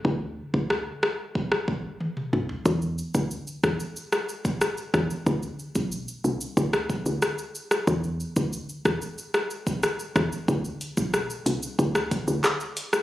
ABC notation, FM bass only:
X:1
M:4/4
L:1/16
Q:1/4=92
K:Dmix
V:1 name="FM bass" clef=bass
D,,3 D,,3 z8 C,,2 | E,,3 D,,2 z E,, z6 z E,, z | D,,2 z B,,,2 z C,, z D,,3 D,, z4 | E,,3 D,,2 z E,, z6 z E,, z |
D,,2 z B,,,2 z C,, z D,,3 D,, z4 |]